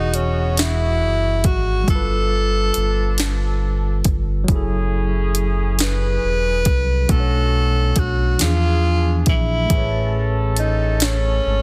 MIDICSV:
0, 0, Header, 1, 6, 480
1, 0, Start_track
1, 0, Tempo, 869565
1, 1036, Time_signature, 6, 3, 24, 8
1, 6415, End_track
2, 0, Start_track
2, 0, Title_t, "Tine electric piano"
2, 0, Program_c, 0, 4
2, 0, Control_c, 0, 64, 127
2, 0, Note_on_c, 0, 52, 66
2, 0, Note_on_c, 0, 66, 63
2, 0, Note_on_c, 0, 68, 78
2, 0, Note_on_c, 0, 75, 60
2, 1001, Note_off_c, 0, 52, 0
2, 1012, Note_off_c, 0, 75, 0
2, 1012, Note_on_c, 0, 55, 63
2, 1022, Note_off_c, 0, 66, 0
2, 1034, Note_on_c, 0, 65, 60
2, 1035, Note_off_c, 0, 68, 0
2, 1042, Control_c, 0, 64, 0
2, 1055, Note_on_c, 0, 69, 61
2, 1078, Note_on_c, 0, 71, 74
2, 1153, Control_c, 0, 64, 127
2, 2442, Note_off_c, 0, 55, 0
2, 2451, Note_on_c, 0, 54, 79
2, 2453, Note_off_c, 0, 65, 0
2, 2464, Note_off_c, 0, 69, 0
2, 2473, Note_on_c, 0, 64, 73
2, 2475, Note_off_c, 0, 71, 0
2, 2484, Control_c, 0, 64, 0
2, 2494, Note_on_c, 0, 68, 71
2, 2515, Note_on_c, 0, 69, 86
2, 2571, Control_c, 0, 64, 127
2, 3881, Note_off_c, 0, 54, 0
2, 3893, Note_off_c, 0, 64, 0
2, 3903, Note_off_c, 0, 68, 0
2, 3907, Note_on_c, 0, 47, 65
2, 3914, Note_off_c, 0, 69, 0
2, 3919, Note_on_c, 0, 57, 63
2, 3923, Control_c, 0, 64, 0
2, 3928, Note_on_c, 0, 62, 61
2, 3939, Note_on_c, 0, 71, 60
2, 3964, Note_off_c, 0, 71, 0
2, 3974, Note_on_c, 0, 73, 69
2, 4024, Control_c, 0, 64, 127
2, 4626, Note_on_c, 0, 52, 61
2, 4629, Note_off_c, 0, 62, 0
2, 4632, Note_off_c, 0, 47, 0
2, 4636, Note_on_c, 0, 62, 62
2, 4638, Note_off_c, 0, 57, 0
2, 4642, Control_c, 0, 64, 0
2, 4646, Note_on_c, 0, 53, 59
2, 4658, Note_on_c, 0, 68, 67
2, 4665, Note_off_c, 0, 73, 0
2, 4726, Control_c, 0, 64, 127
2, 5328, Note_on_c, 0, 57, 63
2, 5345, Note_off_c, 0, 68, 0
2, 5351, Note_off_c, 0, 52, 0
2, 5352, Note_on_c, 0, 68, 64
2, 5356, Note_off_c, 0, 62, 0
2, 5361, Note_off_c, 0, 53, 0
2, 5363, Control_c, 0, 64, 0
2, 5372, Note_on_c, 0, 71, 61
2, 5393, Note_on_c, 0, 73, 77
2, 5456, Control_c, 0, 64, 127
2, 6415, Note_off_c, 0, 57, 0
2, 6415, Note_off_c, 0, 68, 0
2, 6415, Note_off_c, 0, 71, 0
2, 6415, Note_off_c, 0, 73, 0
2, 6415, End_track
3, 0, Start_track
3, 0, Title_t, "Tenor saxophone"
3, 0, Program_c, 1, 66
3, 0, Note_on_c, 1, 63, 103
3, 81, Note_on_c, 1, 61, 82
3, 89, Note_off_c, 1, 63, 0
3, 325, Note_on_c, 1, 64, 100
3, 333, Note_off_c, 1, 61, 0
3, 807, Note_on_c, 1, 66, 94
3, 815, Note_off_c, 1, 64, 0
3, 1042, Note_off_c, 1, 66, 0
3, 1048, Note_on_c, 1, 69, 107
3, 1980, Note_off_c, 1, 69, 0
3, 3213, Note_on_c, 1, 71, 117
3, 3926, Note_on_c, 1, 69, 104
3, 3935, Note_off_c, 1, 71, 0
3, 4408, Note_on_c, 1, 66, 88
3, 4417, Note_off_c, 1, 69, 0
3, 4642, Note_off_c, 1, 66, 0
3, 4647, Note_on_c, 1, 65, 101
3, 5100, Note_off_c, 1, 65, 0
3, 5130, Note_on_c, 1, 64, 102
3, 5672, Note_off_c, 1, 64, 0
3, 5849, Note_on_c, 1, 63, 83
3, 6090, Note_on_c, 1, 61, 96
3, 6098, Note_off_c, 1, 63, 0
3, 6415, Note_off_c, 1, 61, 0
3, 6415, End_track
4, 0, Start_track
4, 0, Title_t, "Horn section"
4, 0, Program_c, 2, 61
4, 0, Note_on_c, 2, 52, 72
4, 0, Note_on_c, 2, 59, 71
4, 0, Note_on_c, 2, 66, 84
4, 775, Note_off_c, 2, 52, 0
4, 775, Note_off_c, 2, 59, 0
4, 775, Note_off_c, 2, 66, 0
4, 1039, Note_on_c, 2, 53, 72
4, 1039, Note_on_c, 2, 62, 76
4, 1039, Note_on_c, 2, 69, 81
4, 2216, Note_off_c, 2, 53, 0
4, 2216, Note_off_c, 2, 62, 0
4, 2216, Note_off_c, 2, 69, 0
4, 2476, Note_on_c, 2, 52, 74
4, 2476, Note_on_c, 2, 61, 67
4, 2476, Note_on_c, 2, 68, 78
4, 3654, Note_off_c, 2, 52, 0
4, 3654, Note_off_c, 2, 61, 0
4, 3654, Note_off_c, 2, 68, 0
4, 3916, Note_on_c, 2, 66, 74
4, 3917, Note_on_c, 2, 50, 70
4, 3917, Note_on_c, 2, 61, 68
4, 4387, Note_off_c, 2, 50, 0
4, 4387, Note_off_c, 2, 61, 0
4, 4387, Note_off_c, 2, 66, 0
4, 4636, Note_on_c, 2, 68, 77
4, 4637, Note_on_c, 2, 53, 64
4, 4638, Note_on_c, 2, 62, 68
4, 5107, Note_off_c, 2, 53, 0
4, 5107, Note_off_c, 2, 62, 0
4, 5107, Note_off_c, 2, 68, 0
4, 5356, Note_on_c, 2, 52, 73
4, 5356, Note_on_c, 2, 61, 76
4, 5356, Note_on_c, 2, 69, 80
4, 6415, Note_off_c, 2, 52, 0
4, 6415, Note_off_c, 2, 61, 0
4, 6415, Note_off_c, 2, 69, 0
4, 6415, End_track
5, 0, Start_track
5, 0, Title_t, "Analog synth bass"
5, 0, Program_c, 3, 38
5, 0, Note_on_c, 3, 28, 109
5, 568, Note_on_c, 3, 30, 92
5, 576, Note_off_c, 3, 28, 0
5, 803, Note_on_c, 3, 32, 93
5, 811, Note_off_c, 3, 30, 0
5, 1017, Note_off_c, 3, 32, 0
5, 1042, Note_on_c, 3, 31, 104
5, 1497, Note_off_c, 3, 31, 0
5, 1528, Note_on_c, 3, 31, 88
5, 2220, Note_off_c, 3, 31, 0
5, 2241, Note_on_c, 3, 31, 90
5, 2457, Note_off_c, 3, 31, 0
5, 2480, Note_on_c, 3, 30, 102
5, 3416, Note_off_c, 3, 30, 0
5, 3446, Note_on_c, 3, 28, 85
5, 3681, Note_on_c, 3, 36, 93
5, 3689, Note_off_c, 3, 28, 0
5, 3896, Note_off_c, 3, 36, 0
5, 3920, Note_on_c, 3, 35, 111
5, 4376, Note_off_c, 3, 35, 0
5, 4402, Note_on_c, 3, 35, 87
5, 4617, Note_off_c, 3, 35, 0
5, 4645, Note_on_c, 3, 40, 96
5, 5098, Note_off_c, 3, 40, 0
5, 5121, Note_on_c, 3, 34, 91
5, 5336, Note_off_c, 3, 34, 0
5, 5360, Note_on_c, 3, 33, 113
5, 6296, Note_off_c, 3, 33, 0
5, 6327, Note_on_c, 3, 32, 91
5, 6415, Note_off_c, 3, 32, 0
5, 6415, End_track
6, 0, Start_track
6, 0, Title_t, "Drums"
6, 75, Note_on_c, 9, 42, 70
6, 130, Note_off_c, 9, 42, 0
6, 317, Note_on_c, 9, 42, 82
6, 327, Note_on_c, 9, 38, 114
6, 372, Note_off_c, 9, 42, 0
6, 382, Note_off_c, 9, 38, 0
6, 795, Note_on_c, 9, 42, 66
6, 798, Note_on_c, 9, 36, 92
6, 850, Note_off_c, 9, 42, 0
6, 853, Note_off_c, 9, 36, 0
6, 1037, Note_on_c, 9, 36, 120
6, 1038, Note_on_c, 9, 42, 71
6, 1092, Note_off_c, 9, 36, 0
6, 1093, Note_off_c, 9, 42, 0
6, 1513, Note_on_c, 9, 42, 68
6, 1568, Note_off_c, 9, 42, 0
6, 1755, Note_on_c, 9, 42, 83
6, 1764, Note_on_c, 9, 38, 104
6, 1810, Note_off_c, 9, 42, 0
6, 1819, Note_off_c, 9, 38, 0
6, 2233, Note_on_c, 9, 42, 63
6, 2237, Note_on_c, 9, 36, 93
6, 2288, Note_off_c, 9, 42, 0
6, 2292, Note_off_c, 9, 36, 0
6, 2475, Note_on_c, 9, 36, 121
6, 2475, Note_on_c, 9, 42, 68
6, 2530, Note_off_c, 9, 42, 0
6, 2531, Note_off_c, 9, 36, 0
6, 2952, Note_on_c, 9, 42, 69
6, 3007, Note_off_c, 9, 42, 0
6, 3194, Note_on_c, 9, 42, 87
6, 3204, Note_on_c, 9, 38, 112
6, 3250, Note_off_c, 9, 42, 0
6, 3259, Note_off_c, 9, 38, 0
6, 3672, Note_on_c, 9, 42, 66
6, 3676, Note_on_c, 9, 36, 96
6, 3727, Note_off_c, 9, 42, 0
6, 3731, Note_off_c, 9, 36, 0
6, 3914, Note_on_c, 9, 42, 70
6, 3915, Note_on_c, 9, 36, 111
6, 3969, Note_off_c, 9, 42, 0
6, 3970, Note_off_c, 9, 36, 0
6, 4392, Note_on_c, 9, 42, 74
6, 4396, Note_on_c, 9, 36, 94
6, 4447, Note_off_c, 9, 42, 0
6, 4451, Note_off_c, 9, 36, 0
6, 4633, Note_on_c, 9, 42, 86
6, 4642, Note_on_c, 9, 38, 107
6, 4688, Note_off_c, 9, 42, 0
6, 4698, Note_off_c, 9, 38, 0
6, 5111, Note_on_c, 9, 42, 65
6, 5115, Note_on_c, 9, 36, 99
6, 5167, Note_off_c, 9, 42, 0
6, 5171, Note_off_c, 9, 36, 0
6, 5354, Note_on_c, 9, 42, 72
6, 5355, Note_on_c, 9, 36, 113
6, 5409, Note_off_c, 9, 42, 0
6, 5410, Note_off_c, 9, 36, 0
6, 5832, Note_on_c, 9, 42, 68
6, 5887, Note_off_c, 9, 42, 0
6, 6073, Note_on_c, 9, 42, 84
6, 6083, Note_on_c, 9, 38, 116
6, 6128, Note_off_c, 9, 42, 0
6, 6138, Note_off_c, 9, 38, 0
6, 6415, End_track
0, 0, End_of_file